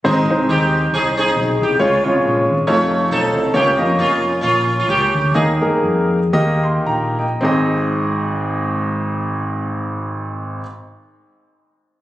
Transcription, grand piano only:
0.04 0.70 G#2 medium
0.04 0.19 G#3 medium
0.04 0.19 C4 medium
0.04 0.19 D#4 medium
0.04 0.19 C5 medium
0.30 0.79 G#3 medium
0.30 0.80 C4 medium
0.30 0.79 D#4 medium
0.30 0.79 C5 medium
1.79 2.45 C#3 medium
1.79 1.94 G#3 medium
1.79 1.94 C#4 medium
1.79 1.94 F4 medium
1.79 1.94 C#5 medium
2.04 2.53 G#3 medium
2.04 2.53 C#4 medium
2.04 2.54 F4 medium
2.04 2.53 C#5 medium
2.67 3.40 A3 medium
2.67 3.40 D#4 medium
2.67 3.40 F4 medium
2.67 3.40 C#5 medium
3.54 4.19 C#3 medium
3.54 3.69 A#3 medium
3.54 3.69 C#4 medium
3.54 3.69 F4 medium
3.54 3.68 C#5 medium
3.78 4.28 A#3 medium
3.78 4.28 C#4 medium
3.78 4.28 F4 medium
3.78 4.28 D#5 medium
5.34 6.08 D#3 medium
5.34 5.50 A#3 medium
5.34 5.51 D#4 medium
5.34 5.50 G#4 medium
5.34 5.51 D#5 medium
5.61 6.17 A#3 medium
5.61 6.18 D#4 medium
5.61 6.18 G#4 medium
5.61 6.18 A#4 medium
6.33 7.14 D#3 medium
6.33 7.23 A#3 medium
6.33 7.23 D#4 medium
6.33 7.23 G4 medium
6.33 6.64 D#5 loud
6.63 6.85 C6 medium
6.86 7.17 G5 medium
6.86 7.17 A#5 medium
7.19 7.43 D#5 soft
7.19 7.73 G5 medium
7.41 10.62 G#1 medium
7.41 10.60 C4 medium
7.41 10.62 D#4 medium
7.41 10.63 G#4 medium
7.41 10.64 D#5 medium

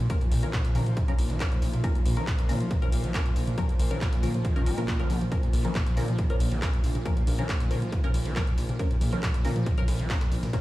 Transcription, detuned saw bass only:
0.32 0.46 A#1 loud
0.75 0.90 A#2 medium
1.19 1.26 A#1 medium
1.30 1.44 A#1 medium
1.62 1.77 A#1 loud
2.05 2.20 A#1 loud
2.49 2.63 A#2 loud
2.92 3.00 A#1 medium
3.04 3.18 A#1 medium
3.36 3.50 A#1 loud
3.80 3.94 A#1 loud
4.23 4.37 A#2 medium
4.66 4.74 G#1 loud
4.78 4.92 A#2 medium
5.10 5.24 A#1 medium
5.53 5.68 A#1 loud
5.97 6.11 A#2 medium
6.40 6.48 A#1 medium
6.51 6.65 A#1 loud
6.84 6.98 A#1 loud
7.27 7.42 A#1 loud
7.71 7.85 A#2 loud
8.14 8.21 A#1 medium
8.25 8.39 A#1 loud
8.57 8.72 A#1 loud
9.01 9.16 A#1 loud
9.45 9.59 A#2 loud
9.88 9.95 A#1 medium
9.99 10.13 A#1 loud
10.31 10.46 A#1 loud

